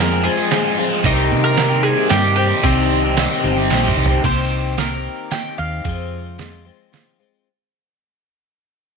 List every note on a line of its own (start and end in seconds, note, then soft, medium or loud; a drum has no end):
0.00 0.27 F2 loud
0.00 0.37 F2 loud
0.00 0.38 C3 medium
0.00 0.12 F3 loud
0.00 0.25 F3 medium
0.00 0.11 G#3 loud
0.00 0.25 G#3 medium
0.00 0.11 C4 loud
0.00 0.24 C4 medium
0.00 0.23 F4 medium
0.00 1.03 G#4 medium
0.00 0.24 A#4 loud
0.00 1.03 F5 medium
0.00 1.00 C6 medium
0.10 0.38 F3 medium
0.10 0.37 G#3 medium
0.10 0.37 C4 medium
0.10 0.36 G#4 medium
0.24 0.50 F3 soft
0.24 0.51 G#3 soft
0.24 0.52 C4 medium
0.24 0.51 F4 medium
0.24 0.73 G#4 medium
0.37 0.65 F3 medium
0.37 0.64 G#3 medium
0.37 0.64 C4 medium
0.37 0.63 G#4 medium
0.51 0.78 F3 medium
0.51 0.78 G#3 medium
0.51 0.78 C4 medium
0.51 0.77 F4 medium
0.51 snare medium
0.51 closed hi-hat medium
0.64 0.76 F3 medium
0.64 0.77 G#3 medium
0.64 0.78 C4 medium
0.64 0.78 G#4 medium
0.77 0.91 F3 medium
0.77 1.05 F3 soft
0.77 0.90 G#3 medium
0.77 1.05 G#3 medium
0.77 0.90 C4 medium
0.77 1.05 C4 soft
0.77 1.05 F4 medium
0.77 0.88 G#4 medium
0.90 1.03 F3 medium
0.90 1.03 G#3 medium
0.90 1.05 C4 medium
0.90 1.02 G#4 medium
1.04 1.33 C2 loud
1.04 1.56 C3 medium
1.04 1.58 C3 medium
1.04 1.28 D#3 medium
1.04 1.56 D#3 medium
1.04 1.30 G3 loud
1.04 1.57 A#3 medium
1.04 1.31 C4 loud
1.04 1.58 C4 medium
1.04 1.46 D#4 loud
1.04 1.31 G4 loud
1.04 1.59 G4 medium
1.04 2.62 A#4 medium
1.04 4.21 D#5 medium
1.04 4.21 C6 medium
1.04 kick loud
1.04 closed hi-hat medium
1.29 1.92 C3 loud
1.29 1.56 D#3 medium
1.29 1.45 G3 medium
1.29 1.44 C4 medium
1.29 1.42 G4 medium
1.43 1.57 G3 medium
1.43 1.58 C4 medium
1.43 1.58 G4 medium
1.43 1.85 A#4 loud
1.56 2.61 C3 medium
1.56 1.97 D#3 medium
1.56 2.09 D#3 medium
1.56 1.71 G3 loud
1.56 2.09 A#3 medium
1.56 1.71 C4 loud
1.56 2.10 C4 medium
1.56 1.69 G4 medium
1.56 2.11 G4 medium
1.56 snare loud
1.56 closed hi-hat medium
1.69 1.99 G3 medium
1.69 1.97 C4 medium
1.69 1.96 G4 medium
1.83 2.09 G#4 loud
1.96 2.25 G3 medium
1.96 2.24 C4 medium
1.96 2.23 G4 medium
2.09 2.52 G2 loud
2.09 2.37 D#3 medium
2.09 2.37 A#3 medium
2.09 2.36 C4 medium
2.09 2.35 G4 loud
2.09 2.35 G4 medium
2.09 snare medium
2.09 closed hi-hat medium
2.23 2.37 G3 medium
2.23 2.38 C4 medium
2.23 2.38 G4 medium
2.36 2.61 D#3 medium
2.36 2.51 G3 medium
2.36 2.63 A#3 soft
2.36 2.63 C4 medium
2.36 2.50 C4 medium
2.36 2.64 G4 loud
2.36 2.63 G4 medium
2.36 2.48 G4 medium
2.49 2.63 G3 medium
2.49 2.64 C4 medium
2.49 2.64 G4 medium
2.62 3.25 C2 medium
2.62 3.15 C3 loud
2.62 3.17 C3 medium
2.62 2.88 D#3 medium
2.62 3.16 D#3 medium
2.62 2.90 G3 medium
2.62 3.66 C4 medium
2.62 3.16 C4 medium
2.62 2.90 C4 loud
2.62 3.17 D#4 medium
2.62 3.17 G4 loud
2.62 2.91 G4 loud
2.62 4.23 G4 medium
2.62 kick loud
2.62 closed hi-hat medium
2.90 3.16 D#3 medium
2.90 3.04 G3 medium
2.90 3.04 C4 medium
2.90 3.02 G4 medium
3.04 3.17 G3 medium
3.04 3.17 C4 medium
3.04 3.18 G4 medium
3.16 3.57 C3 loud
3.16 3.57 D#3 loud
3.16 3.44 D#3 medium
3.16 3.30 G3 medium
3.16 3.44 C4 medium
3.16 3.30 C4 loud
3.16 3.43 D#4 medium
3.16 3.42 G4 medium
3.16 3.28 G4 loud
3.16 snare loud
3.16 closed hi-hat medium
3.29 3.57 G3 medium
3.29 3.56 C4 medium
3.29 3.55 G4 medium
3.43 3.68 G1 loud
3.43 3.70 C4 medium
3.43 3.70 D#4 medium
3.43 3.70 G4 medium
3.56 3.84 G3 medium
3.56 3.83 C4 medium
3.56 3.82 G4 medium
3.70 3.95 A#1 medium
3.70 4.23 D#3 medium
3.70 4.23 C4 medium
3.70 4.24 D#4 medium
3.70 4.23 G4 medium
3.70 snare medium
3.70 closed hi-hat medium
3.83 3.96 G3 medium
3.83 3.97 C4 medium
3.83 3.98 G4 medium
3.88 mid tom medium
3.96 4.21 C2 medium
3.96 4.22 D#3 medium
3.96 4.10 G3 medium
3.96 4.09 C4 medium
3.96 4.08 G4 medium
4.06 4.22 G4 medium
4.06 floor tom loud
4.10 4.23 G3 medium
4.10 4.22 C4 medium
4.23 5.07 C2 medium
4.23 4.77 C3 medium
4.23 4.75 D#3 medium
4.23 4.76 A#3 medium
4.23 4.77 C4 medium
4.23 4.77 G4 medium
4.23 4.78 C5 medium
4.23 kick loud
4.23 closed hi-hat medium
4.23 crash medium
4.76 5.29 D#3 soft
4.76 5.30 A#3 soft
4.76 5.31 C4 medium
4.76 5.31 G4 medium
4.76 5.33 A#4 medium
4.76 snare medium
4.76 closed hi-hat medium
5.30 5.84 D#3 medium
5.30 5.84 A#3 medium
5.30 5.85 C4 medium
5.30 5.85 G4 medium
5.30 5.58 G5 loud
5.30 snare medium
5.30 closed hi-hat medium
5.58 5.80 D#2 medium
5.58 6.90 F5 medium
5.84 6.39 F2 medium
5.84 6.69 F2 medium
5.84 6.39 C3 medium
5.84 6.37 F3 medium
5.84 6.37 G#3 medium
5.84 6.38 C4 medium
5.84 6.39 F4 medium
5.84 kick loud
5.84 closed hi-hat soft
6.38 6.65 F3 medium
6.38 6.65 G#3 medium
6.38 6.65 C4 medium
6.38 6.64 F4 medium
6.38 snare medium
6.38 closed hi-hat medium
6.65 6.91 F3 soft
6.65 6.92 G#3 soft
6.65 6.93 C4 soft
6.65 6.93 F4 soft
6.92 7.20 F3 medium
6.92 7.19 G#3 medium
6.92 7.18 C4 medium
6.92 7.18 F4 medium
6.92 snare medium
6.92 closed hi-hat soft
7.19 7.48 F3 soft
7.19 7.48 G#3 soft
7.19 7.47 C4 soft
7.19 7.47 F4 medium